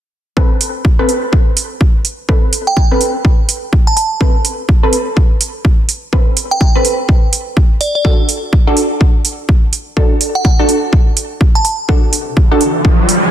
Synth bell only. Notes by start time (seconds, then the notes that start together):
2.67 G5
2.77 G5
3.87 A5
3.97 A5
6.51 G5
6.61 G5
7.81 D5
7.95 D5
10.35 F#5
10.45 F#5
11.55 A5
11.65 A5